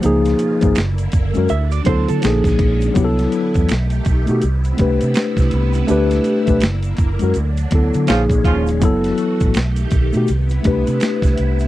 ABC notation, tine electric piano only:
X:1
M:4/4
L:1/16
Q:"Swing 16ths" 1/4=82
K:Clyd
V:1 name="Tine electric piano"
[^E,_B,^D^G]3 [E,B,DG] z3 [^G,^CF^A] z2 [F,=B,=E=A]2 [=F,_B,D_A]3 z | [F,B,EGA]4 z3 [A,^DFG] z2 [A,=DGB]4- [A,DGB] z | [A,DGB]3 [A,DGB] z3 [^G,^CF^A] z2 [F,B,E=A]2 [=F,_B,^D_A]3 z | [F,B,EA]4 z3 [A,^DFG] z2 [A,=DGB]4- [A,DGB] z |]